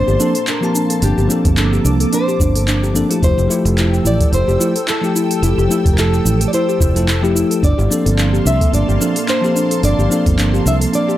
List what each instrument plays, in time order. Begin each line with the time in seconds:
Already playing: tine electric piano F3 A#3 C4 A4, analog synth pad A#3 A5 C6, nylon-string guitar C5
0.08 fingered electric bass G1, synth arpeggio sound G4, cabasa
0.18 tine electric piano F3 A#3 C4 A4, synth arpeggio sound D4, cabasa
0.35 synth arpeggio sound A4, open hi-hat, cabasa
0.47 synth arpeggio sound D4, nylon-string guitar A#4, clap, open hi-hat, cabasa
0.61 tine electric piano F3 A#3 C4 A5, synth arpeggio sound G4, cabasa
0.75 synth arpeggio sound D4, cabasa
0.90 synth arpeggio sound A4, open hi-hat, cabasa
1.02 fingered electric bass G1, synth arpeggio sound D4, nylon-string guitar G4, analog synth pad D6, open hi-hat, cabasa
1.17 fingered electric bass G1, synth arpeggio sound G4, cabasa
1.27 tine electric piano F3 A#3 C4, synth arpeggio sound D4, cabasa
1.31 tine electric piano A4
1.45 fingered electric bass G1, synth arpeggio sound A4, kick, open hi-hat, cabasa
1.57 synth arpeggio sound D4, nylon-string guitar A4, clap, open hi-hat, cabasa
1.73 synth arpeggio sound G4, cabasa
1.85 fingered electric bass C2, synth arpeggio sound D4, cabasa
2.00 synth arpeggio sound A4, open hi-hat, cabasa
2.12 synth arpeggio sound D4, nylon-string guitar C5, open hi-hat, cabasa
2.28 synth arpeggio sound G4, cabasa
2.40 fingered electric bass G1, synth arpeggio sound D4, kick, cabasa
2.55 synth arpeggio sound A4, open hi-hat, cabasa
2.68 synth arpeggio sound D4, clap, open hi-hat, cabasa
2.83 synth arpeggio sound G4, cabasa
2.94 tine electric piano F3 A#3 C4 A4, synth arpeggio sound D4, cabasa
3.09 tine electric piano F3 A3 E4 G4, synth arpeggio sound A4, open hi-hat, cabasa
3.22 fingered electric bass F1, synth arpeggio sound E4, analog synth pad A4 G5 E6, nylon-string guitar C5, kick, open hi-hat, cabasa
3.38 fingered electric bass F1, synth arpeggio sound G4, cabasa
3.48 tine electric piano F3 A3 E4 G4, synth arpeggio sound E4, cabasa
3.65 fingered electric bass F1, synth arpeggio sound A4, open hi-hat, cabasa
3.77 synth arpeggio sound E4, clap, open hi-hat, cabasa
3.93 synth arpeggio sound G4, cabasa
4.05 fingered electric bass A1, synth arpeggio sound E4, nylon-string guitar D5, cabasa
4.20 synth arpeggio sound A4, kick, open hi-hat, cabasa
4.32 fingered electric bass F1, synth arpeggio sound E4, nylon-string guitar C5, open hi-hat, cabasa
4.48 fingered electric bass F1, synth arpeggio sound G4, cabasa
4.59 tine electric piano F3 A3 E4 G4, synth arpeggio sound E4, cabasa
4.76 synth arpeggio sound A4, open hi-hat, cabasa
4.88 synth arpeggio sound E4, nylon-string guitar A4, clap, open hi-hat, cabasa
5.01 tine electric piano F3 A3 E4 G4, synth arpeggio sound G4, cabasa
5.15 synth arpeggio sound E4, cabasa
5.31 synth arpeggio sound A4, open hi-hat, cabasa
5.42 fingered electric bass F1, synth arpeggio sound E4, nylon-string guitar G4, open hi-hat, cabasa
5.58 fingered electric bass F1, synth arpeggio sound G4, cabasa
5.68 tine electric piano F3 A3 E4 G4, synth arpeggio sound E4, cabasa
5.85 fingered electric bass F1, synth arpeggio sound A4, kick, open hi-hat, cabasa
5.93 nylon-string guitar A#4
5.98 synth arpeggio sound E4, nylon-string guitar A4, clap, open hi-hat, cabasa
6.14 synth arpeggio sound G4, cabasa
6.25 fingered electric bass A1, synth arpeggio sound E4, cabasa
6.41 synth arpeggio sound A4, open hi-hat, cabasa
6.48 nylon-string guitar D5
6.53 synth arpeggio sound E4, nylon-string guitar C5, open hi-hat, cabasa
6.69 synth arpeggio sound G4, cabasa
6.80 fingered electric bass F1, synth arpeggio sound E4, kick, cabasa
6.95 tine electric piano F3 A3 E4 A4, synth arpeggio sound A4, open hi-hat, cabasa
7.08 synth arpeggio sound E4, clap, open hi-hat, cabasa
7.22 tine electric piano F3 A3 E4 G4, synth arpeggio sound G4, cabasa
7.35 synth arpeggio sound E4, cabasa
7.51 synth arpeggio sound A4, open hi-hat, cabasa
7.62 fingered electric bass G1, analog synth pad A#3 F5 A5 C6, synth arpeggio sound D4, nylon-string guitar D5, kick, open hi-hat, cabasa
7.78 fingered electric bass G1, synth arpeggio sound G4, cabasa
7.89 tine electric piano F3 A#3 C4 A4, synth arpeggio sound D4, cabasa
8.06 fingered electric bass G1, synth arpeggio sound A4, open hi-hat, cabasa
8.18 synth arpeggio sound D4, clap, open hi-hat, cabasa
8.33 synth arpeggio sound G4, cabasa
8.45 fingered electric bass C2, synth arpeggio sound D4, nylon-string guitar E5, cabasa
8.61 synth arpeggio sound A4, kick, open hi-hat, cabasa
8.73 fingered electric bass G1, synth arpeggio sound D4, nylon-string guitar D5, open hi-hat, cabasa
8.88 fingered electric bass G1, synth arpeggio sound G4, cabasa
9.00 tine electric piano F3 A#3 C4 A4, synth arpeggio sound D4, cabasa
9.16 synth arpeggio sound A4, open hi-hat, cabasa
9.28 synth arpeggio sound D4, nylon-string guitar C5, clap, open hi-hat, cabasa
9.42 tine electric piano F3 A#3 C4 A4, synth arpeggio sound G4, cabasa
9.56 synth arpeggio sound D4, cabasa
9.71 synth arpeggio sound A4, open hi-hat, cabasa
9.83 fingered electric bass G1, synth arpeggio sound D4, nylon-string guitar D5, open hi-hat, cabasa
9.99 fingered electric bass G1, synth arpeggio sound G4, cabasa
10.09 tine electric piano F3 A#3 C4 A4, synth arpeggio sound D4, cabasa
10.26 fingered electric bass G1, synth arpeggio sound A4, kick, open hi-hat, cabasa
10.38 synth arpeggio sound D4, clap, open hi-hat, cabasa
10.53 synth arpeggio sound G4, cabasa
10.66 fingered electric bass C2, synth arpeggio sound D4, nylon-string guitar E5, cabasa
10.81 synth arpeggio sound A4, open hi-hat, cabasa
10.93 synth arpeggio sound D4, nylon-string guitar D5, open hi-hat, cabasa
11.08 synth arpeggio sound G4, cabasa